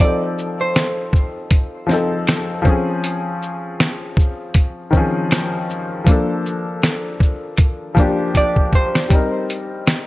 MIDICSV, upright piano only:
0, 0, Header, 1, 2, 480
1, 0, Start_track
1, 0, Key_signature, -2, "major"
1, 0, Tempo, 759494
1, 1916, Time_signature, 4, 2, 24, 8
1, 6363, End_track
2, 0, Start_track
2, 0, Title_t, "Upright piano"
2, 0, Program_c, 0, 0
2, 0, Control_c, 0, 64, 127
2, 0, Note_on_c, 0, 53, 68
2, 0, Note_on_c, 0, 60, 61
2, 3, Control_c, 0, 64, 0
2, 14, Note_on_c, 0, 63, 63
2, 27, Note_on_c, 0, 69, 72
2, 114, Control_c, 0, 64, 127
2, 815, Note_off_c, 0, 53, 0
2, 822, Note_off_c, 0, 60, 0
2, 830, Note_off_c, 0, 63, 0
2, 837, Note_off_c, 0, 69, 0
2, 1179, Note_on_c, 0, 53, 78
2, 1193, Note_on_c, 0, 60, 80
2, 1207, Note_on_c, 0, 63, 70
2, 1221, Note_on_c, 0, 69, 93
2, 1645, Note_off_c, 0, 53, 0
2, 1655, Note_on_c, 0, 53, 94
2, 1660, Note_off_c, 0, 60, 0
2, 1669, Note_on_c, 0, 60, 79
2, 1681, Note_off_c, 0, 63, 0
2, 1684, Note_on_c, 0, 61, 81
2, 1685, Control_c, 0, 64, 0
2, 1689, Note_off_c, 0, 69, 0
2, 1698, Note_on_c, 0, 68, 98
2, 1801, Control_c, 0, 64, 127
2, 2490, Note_off_c, 0, 53, 0
2, 2498, Note_off_c, 0, 60, 0
2, 2505, Note_off_c, 0, 61, 0
2, 2512, Note_off_c, 0, 68, 0
2, 3100, Note_on_c, 0, 51, 83
2, 3113, Note_on_c, 0, 60, 86
2, 3128, Note_on_c, 0, 61, 84
2, 3140, Note_on_c, 0, 53, 95
2, 3143, Note_on_c, 0, 68, 93
2, 3155, Note_off_c, 0, 51, 0
2, 3739, Note_off_c, 0, 60, 0
2, 3746, Note_off_c, 0, 61, 0
2, 3752, Note_off_c, 0, 53, 0
2, 3754, Note_off_c, 0, 68, 0
2, 3819, Note_on_c, 0, 53, 78
2, 3833, Note_on_c, 0, 58, 76
2, 3846, Control_c, 0, 64, 0
2, 3848, Note_on_c, 0, 62, 76
2, 3861, Note_on_c, 0, 69, 85
2, 3937, Control_c, 0, 64, 127
2, 4652, Note_off_c, 0, 53, 0
2, 4659, Note_off_c, 0, 58, 0
2, 4667, Note_off_c, 0, 62, 0
2, 4674, Note_off_c, 0, 69, 0
2, 5022, Note_on_c, 0, 53, 94
2, 5036, Note_on_c, 0, 58, 80
2, 5050, Note_on_c, 0, 62, 100
2, 5063, Note_on_c, 0, 67, 94
2, 5653, Note_off_c, 0, 53, 0
2, 5660, Note_off_c, 0, 58, 0
2, 5667, Note_off_c, 0, 62, 0
2, 5674, Note_off_c, 0, 67, 0
2, 5741, Note_on_c, 0, 55, 68
2, 5755, Note_on_c, 0, 60, 70
2, 5764, Control_c, 0, 64, 0
2, 5770, Note_on_c, 0, 63, 65
2, 5784, Note_on_c, 0, 70, 71
2, 5861, Control_c, 0, 64, 127
2, 6363, Note_off_c, 0, 55, 0
2, 6363, Note_off_c, 0, 60, 0
2, 6363, Note_off_c, 0, 63, 0
2, 6363, Note_off_c, 0, 70, 0
2, 6363, End_track
0, 0, End_of_file